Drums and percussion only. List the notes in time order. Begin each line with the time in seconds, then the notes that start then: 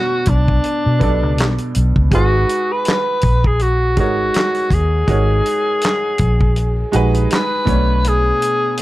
0.26 kick, closed hi-hat
0.48 kick
0.64 closed hi-hat
1.01 kick, closed hi-hat
1.38 snare, clap, closed hi-hat
1.58 closed hi-hat
1.75 closed hi-hat
1.96 kick
2.11 kick, closed hi-hat
2.49 closed hi-hat
2.85 snare, closed hi-hat
2.89 clap
3.21 kick, closed hi-hat
3.44 kick
3.59 closed hi-hat
3.97 kick, closed hi-hat
4.34 snare, clap, closed hi-hat
4.54 closed hi-hat
4.71 kick, closed hi-hat
5.08 kick, closed hi-hat
5.46 closed hi-hat
5.81 snare, closed hi-hat
5.86 clap
6.18 kick, closed hi-hat
6.41 kick
6.56 closed hi-hat
6.93 closed hi-hat
7.14 closed hi-hat
7.30 snare, clap, closed hi-hat
7.67 kick, closed hi-hat
8.04 closed hi-hat
8.42 closed hi-hat
8.77 closed hi-hat